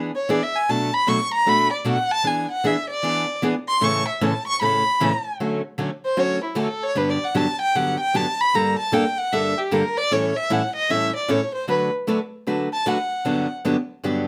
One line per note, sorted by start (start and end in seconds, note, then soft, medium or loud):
0.00 0.10 E3 medium
0.00 0.11 B3 medium
0.00 0.11 D4 medium
0.00 0.11 G#4 medium
0.16 0.31 C#5 medium
0.29 0.40 E3 medium
0.29 0.40 B3 medium
0.29 0.40 D4 medium
0.29 0.40 G#4 medium
0.29 0.45 D5 medium
0.43 0.58 E5 medium
0.56 0.72 G#5 medium
0.69 0.90 B2 medium
0.69 0.90 F#3 medium
0.69 0.90 A3 medium
0.69 0.90 D4 medium
0.69 0.90 F#4 medium
0.69 0.96 A5 medium
0.94 1.10 B5 loud
1.07 1.18 B2 medium
1.07 1.18 F#3 medium
1.07 1.18 A3 medium
1.07 1.18 D4 medium
1.07 1.18 F#4 medium
1.07 1.32 C#6 medium
1.34 1.50 A#5 loud
1.46 1.67 B2 medium
1.46 1.68 F#3 medium
1.46 1.68 A3 medium
1.46 1.68 D4 medium
1.46 1.68 F#4 medium
1.46 1.72 B5 loud
1.73 1.89 D5 soft
1.85 1.96 B2 medium
1.85 1.97 F#3 medium
1.85 1.97 A3 medium
1.85 1.97 D4 medium
1.85 1.97 F#4 medium
1.85 2.13 F#5 loud
2.11 2.28 A5 loud
2.24 2.45 E3 medium
2.24 2.45 B3 medium
2.24 2.46 D4 medium
2.24 2.46 G#4 medium
2.24 2.50 G#5 medium
2.52 2.68 F#5 medium
2.64 2.75 E3 medium
2.64 2.75 B3 medium
2.64 2.76 D4 medium
2.64 2.75 G#4 medium
2.64 2.90 E5 medium
2.90 3.39 D5 medium
3.03 3.24 E3 medium
3.03 3.25 B3 medium
3.03 3.25 D4 medium
3.03 3.25 G#4 medium
3.42 3.53 E3 medium
3.42 3.54 B3 medium
3.42 3.54 D4 medium
3.42 3.54 G#4 medium
3.68 3.85 C6 loud
3.81 4.02 A2 medium
3.81 4.03 C#3 medium
3.81 4.03 E3 medium
3.81 4.03 A3 medium
3.81 4.03 C#4 medium
3.81 4.03 A4 medium
3.81 4.07 C#6 loud
4.09 4.24 E5 medium
4.21 4.32 A2 medium
4.21 4.32 C#3 medium
4.21 4.32 E3 medium
4.21 4.32 A3 loud
4.21 4.33 C#4 medium
4.21 4.33 A4 medium
4.21 4.46 A5 medium
4.47 4.60 C#6 loud
4.61 4.82 A2 medium
4.61 4.82 C#3 medium
4.61 4.82 E3 medium
4.61 4.82 A3 medium
4.61 4.82 C#4 medium
4.61 4.82 A4 medium
4.61 5.28 B5 loud
5.00 5.11 A2 medium
5.00 5.11 C#3 loud
5.00 5.11 E3 medium
5.00 5.11 A3 medium
5.00 5.11 C#4 loud
5.00 5.12 A4 loud
5.40 5.61 D3 medium
5.40 5.61 F#3 medium
5.40 5.61 A3 medium
5.40 5.61 C#4 medium
5.40 5.61 F#4 medium
5.78 5.89 D3 medium
5.78 5.89 F#3 medium
5.78 5.89 A3 medium
5.78 5.90 C#4 medium
5.78 5.90 F#4 medium
6.05 6.21 C5 medium
6.17 6.38 D3 medium
6.17 6.38 F#3 medium
6.17 6.38 A3 medium
6.17 6.38 C#4 medium
6.17 6.39 F#4 medium
6.17 6.43 C#5 medium
6.45 6.60 E4 soft
6.55 6.67 D3 medium
6.55 6.67 F#3 medium
6.55 6.67 A3 medium
6.55 6.67 C#4 medium
6.55 6.67 F#4 loud
6.55 6.85 A4 medium
6.83 6.99 C#5 loud
6.95 7.17 G2 medium
6.95 7.17 D3 medium
6.95 7.17 F#3 medium
6.95 7.17 B3 medium
6.95 7.17 D4 medium
6.95 7.17 G4 medium
6.95 7.12 B4 medium
7.10 7.25 D5 medium
7.23 7.38 F#5 medium
7.34 7.46 G2 medium
7.34 7.46 D3 medium
7.34 7.46 F#3 medium
7.34 7.46 B3 medium
7.34 7.46 D4 medium
7.34 7.46 G4 medium
7.34 7.60 A5 medium
7.62 7.77 G5 medium
7.75 7.96 G2 medium
7.75 7.96 D3 medium
7.75 7.96 F#3 medium
7.75 7.96 B3 medium
7.75 7.96 D4 medium
7.75 7.96 G4 medium
7.75 8.00 F#5 medium
8.00 8.17 G5 loud
8.14 8.25 G2 medium
8.14 8.25 D3 medium
8.14 8.25 F#3 medium
8.14 8.25 B3 medium
8.14 8.25 D4 medium
8.14 8.25 G4 medium
8.14 8.42 A5 medium
8.41 8.57 B5 loud
8.54 8.75 G2 medium
8.54 8.75 D3 medium
8.54 8.75 G3 medium
8.54 8.75 A#3 medium
8.54 8.75 D4 medium
8.54 8.75 A4 medium
8.54 8.79 A#5 medium
8.79 8.95 A5 medium
8.92 9.03 G2 medium
8.92 9.03 D3 medium
8.92 9.03 G3 medium
8.92 9.04 A#3 loud
8.92 9.04 D4 medium
8.92 9.04 A4 loud
8.92 9.19 G5 medium
9.18 9.34 F#5 medium
9.32 9.53 G2 medium
9.32 9.53 D3 medium
9.32 9.54 G3 medium
9.32 9.53 A#3 medium
9.32 9.54 D4 medium
9.32 9.54 A4 medium
9.32 9.59 E5 medium
9.58 9.75 G4 medium
9.71 9.82 G2 medium
9.71 9.82 D3 medium
9.71 9.83 G3 medium
9.71 9.83 A#3 loud
9.71 9.82 D4 medium
9.71 9.83 A4 medium
9.71 9.99 A#4 medium
9.97 10.14 D5 loud
10.11 10.32 A2 medium
10.11 10.32 E3 medium
10.11 10.32 G3 medium
10.11 10.32 C#4 medium
10.11 10.32 E4 medium
10.11 10.32 A4 medium
10.11 10.38 C#5 medium
10.36 10.54 E5 medium
10.50 10.61 A2 medium
10.50 10.61 E3 medium
10.50 10.61 G3 medium
10.50 10.61 C#4 medium
10.50 10.61 E4 loud
10.50 10.61 A4 loud
10.50 10.75 F#5 medium
10.76 10.92 D#5 medium
10.89 11.10 A2 medium
10.89 11.11 E3 medium
10.89 11.11 G3 medium
10.89 11.11 C#4 medium
10.89 11.11 E4 medium
10.89 11.11 A4 medium
10.89 11.14 E5 medium
11.16 11.32 D5 medium
11.28 11.39 A2 medium
11.28 11.39 E3 medium
11.28 11.40 G3 medium
11.28 11.40 C#4 medium
11.28 11.40 E4 medium
11.28 11.40 A4 medium
11.28 11.54 C#5 medium
11.55 11.67 C5 medium
11.67 11.89 D3 medium
11.67 11.89 F#3 medium
11.67 11.89 A3 medium
11.67 11.89 D4 medium
11.67 11.89 F#4 medium
11.67 11.89 B4 medium
11.67 11.83 B4 medium
12.07 12.18 D3 medium
12.07 12.18 F#3 medium
12.07 12.18 A3 medium
12.07 12.18 D4 medium
12.07 12.19 F#4 medium
12.07 12.19 B4 loud
12.47 12.67 D3 medium
12.47 12.68 F#3 medium
12.47 12.68 A3 medium
12.47 12.68 D4 medium
12.47 12.68 F#4 medium
12.47 12.68 B4 medium
12.74 12.90 A5 medium
12.86 12.97 D3 medium
12.86 12.97 F#3 medium
12.86 12.97 A3 medium
12.86 12.97 D4 medium
12.86 12.97 F#4 medium
12.86 12.97 B4 loud
12.86 13.50 F#5 medium
13.25 13.46 G2 medium
13.25 13.46 D3 medium
13.25 13.46 F#3 medium
13.25 13.46 B3 medium
13.25 13.46 D4 medium
13.25 13.46 G4 medium
13.65 13.75 G2 medium
13.65 13.75 D3 medium
13.65 13.75 F#3 medium
13.65 13.76 B3 medium
13.65 13.76 D4 medium
13.65 13.76 G4 medium
14.04 14.24 G2 medium
14.04 14.25 D3 medium
14.04 14.24 F#3 medium
14.04 14.25 B3 medium
14.04 14.25 D4 medium
14.04 14.25 G4 medium